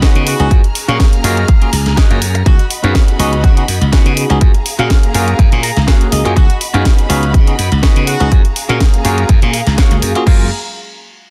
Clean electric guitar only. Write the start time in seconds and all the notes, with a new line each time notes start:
0.02 F#4 B4 C#5 D#5
0.40 muted clean electric guitar stroke
0.51 muted clean electric guitar stroke
0.64 muted clean electric guitar stroke
0.88 F#4 G#4 A#4 C#5
1.24 F#4 G#4 A#4 D#5 F5
1.49 F5
1.73 muted clean electric guitar stroke
1.86 muted clean electric guitar stroke
1.97 F#4 G#4 A#4 D#5 F#5
2.35 muted clean electric guitar stroke
2.46 muted clean electric guitar stroke
2.59 muted clean electric guitar stroke
2.83 F#4 B4 C#5 F5
3.19 F#4 B4 C#5 D#5
3.68 muted clean electric guitar stroke
3.81 muted clean electric guitar stroke
3.92 F#4 B4 C#5 F#5
4.30 muted clean electric guitar stroke
4.41 muted clean electric guitar stroke
4.54 muted clean electric guitar stroke
4.79 F#4 G#4 A#4 F5
5.14 F#4 G#4 A#4 F5
5.63 A#5, muted clean electric guitar stroke
5.76 muted clean electric guitar stroke
5.87 F#4 G#4 A#4 F5 F#5
6.12 D#5
6.25 muted clean electric guitar stroke
6.36 muted clean electric guitar stroke
6.49 muted clean electric guitar stroke
6.74 F#4 B4 C#5 F5
7.09 F#4 B4 C#5 F5
7.58 muted clean electric guitar stroke
7.71 muted clean electric guitar stroke
7.83 F#4 B4 C#5 D#5
8.20 muted clean electric guitar stroke
8.32 muted clean electric guitar stroke
8.45 muted clean electric guitar stroke
8.69 F#4 G#4 A#4 F5
9.05 F#4 G#4 A#4 F5
9.53 muted clean electric guitar stroke
9.67 muted clean electric guitar stroke
9.78 F#4 G#4 A#4 C#5
10.15 muted clean electric guitar stroke
10.26 G#4 A#4 F5